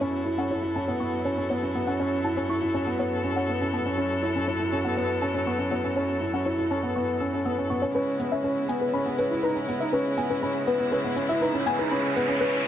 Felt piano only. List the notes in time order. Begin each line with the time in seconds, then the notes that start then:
0.01 C#4
0.26 E4
0.38 C#4
0.50 E4
0.63 E4
0.76 C#4
0.88 B3
1.00 B3
1.25 C#4
1.38 C#4
1.50 B3
1.63 C#4
1.75 B3
1.88 C#4
2.00 C#4
2.24 E4
2.37 C#4
2.49 E4
2.62 E4
2.74 C#4
2.87 B3
2.99 B3
3.24 C#4
3.36 C#4
3.49 B3
3.61 C#4
3.73 B3
3.86 C#4
3.98 C#4
4.23 E4
4.36 C#4
4.48 E4
4.60 E4
4.72 C#4
4.85 B3
4.97 B3
5.22 C#4
5.34 C#4
5.47 B3
5.59 C#4
5.71 B3
5.84 C#4
5.96 C#4
6.21 E4
6.34 C#4
6.46 E4
6.58 E4
6.71 C#4
6.83 B3
6.96 B3
7.21 C#4
7.33 C#4
7.45 B3
7.58 C#4
7.70 B3
7.82 C#4
7.95 C#4
8.20 B3
8.32 C#4
8.44 C#4
8.69 B3
8.81 B3
8.94 C#4
9.06 B3
9.19 C#4
9.31 E4
9.43 D#4
9.56 C#4
9.68 B3
9.81 D#4
9.93 C#4
10.17 B3
10.30 C#4
10.42 C#4
10.67 B3
10.79 B3
10.92 C#4
11.04 B3
11.16 C#4
11.29 E4
11.41 D#4
11.54 C#4
11.66 B3
11.79 D#4
11.91 C#4
12.17 B3
12.28 C#4
12.41 C#4